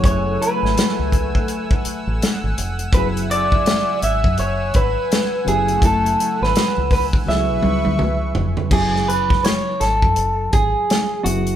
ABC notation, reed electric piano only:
X:1
M:4/4
L:1/8
Q:"Swing 16ths" 1/4=83
K:Emix
V:1 name="Reed electric piano"
[C,F,B,EG]6- [C,F,B,EG] z | [C,F,B,EG]6- [C,F,B,EG] [C,F,B,E=G^g]- | [C,F,B,E=G^g]4 [C,F,B,E^G]4 | [C,F,B,E=G^g]6- [C,F,B,E=G^g] [C,F,B,E^G] |]